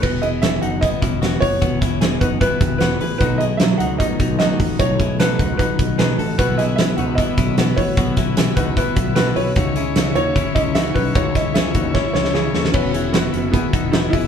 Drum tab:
CC |x---------------|----------------|----------------|----------------|
HH |--x-x-x-x-x-x-o-|x-x-x-x-x-x-x-o-|x-x-x-x-x-x-x-o-|x-x-x-x-x-x-x-o-|
SD |----o-------o---|--o-o-------o---|----o-------o---|----o-------o---|
BD |o-------o-o---o-|o-o---o-o-o-----|o-------o-o---o-|o-o---o-o-o-----|

CC |----------------|----------------|----------------|----------------|
HH |x-x-x-x-x-x-x-o-|x-x-x-x-x-x-x-o-|x-x-x-x-x-x-x-o-|x-x-x-x---------|
SD |--o-o-------o---|--o-o-------o---|----o-------o---|--o-o---o-ooo-oo|
BD |o-------o-o---o-|o-o---o-o-o-----|o-------o-o---o-|o-o---o-o-------|

CC |x---------------|
HH |--x-x-x-x-x-x-o-|
SD |----o-------o---|
BD |o-------o-o---o-|